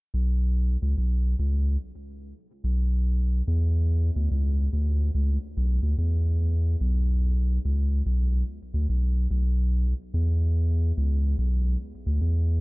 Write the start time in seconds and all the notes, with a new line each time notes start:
0.14 B1
0.82 C#2
0.98 B1
1.39 C#2
2.64 B1
3.48 E2
4.16 D2
4.31 C#2
4.73 D2
5.15 C#2
5.57 B1
5.83 D2
5.98 E2
6.81 B1
7.65 C#2
8.06 B1
8.74 D2
8.89 B1
9.31 B1
10.14 E2
10.97 C#2
11.38 B1
12.06 D2
12.21 E2